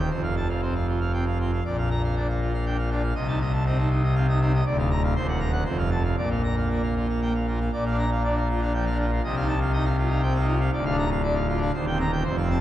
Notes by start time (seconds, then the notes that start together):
0.10 F1 F2 C5
0.23 F5
0.37 A5
0.49 F5
0.62 C4 C5
0.75 F5
0.88 F4
1.01 F5
1.13 C4 G5
1.27 F5
1.40 C4 F4
1.53 F5
1.65 A#1 A#2 D5
1.78 F5
1.91 A#5
2.04 F5
2.16 D4 D5
2.29 F5
2.41 F4
2.54 F5
2.66 D4 G5
2.78 F5
2.91 D4 F4
3.03 F5
3.15 C2 C3 D#5
3.28 D#4 A5
3.41 D#5
3.53 A5
3.66 C4 D#5
3.78 D#4 A5
3.91 D#4
4.03 D#5
4.15 C4 F5
4.29 D#4 D#5
4.41 C4 D#4
4.54 D#5
4.66 D1 D2 D5
4.78 F5
4.91 A#5
5.04 F5
5.16 D#1 D#2 C5
5.28 F#5
5.40 A#5
5.52 F#5
5.65 F1 F2 C5
5.78 F5
5.91 A5
6.04 F5
6.18 A#1 A#2 D5
6.30 F5
6.44 A#5
6.58 F5
6.70 A#3 D5
6.83 F5
6.96 F4
7.09 F5
7.22 A#3 G5
7.35 F5
7.48 A#3 F4
7.60 F5
7.73 A#1 A#2 D5
7.86 F5
7.91 D4
7.99 A#5
8.12 F5
8.24 D4 D5
8.38 F5
8.49 F4
8.58 D4
8.62 F5
8.74 F3 G5
8.86 F5
8.91 D4
9.00 F4
9.12 F5
9.24 C2 C3 D#5
9.36 D#4 F5
9.48 A5
9.61 F5
9.73 D#4 D#5
9.85 F5
9.98 F4
10.07 D#4 F5
10.22 C4 G5
10.35 D#4 F5
10.48 F4
10.60 F5
10.73 D1 D2 D5
10.86 F5
10.91 D4
10.98 A#5
11.11 F5
11.23 D4 D5
11.36 F5
11.48 F4
11.57 D4
11.62 F5
11.74 D#1 D#2 C5
11.87 G5
11.91 C4
12.00 A#5
12.12 G5
12.24 F1 F2 C5
12.37 F5
12.43 C4
12.51 A5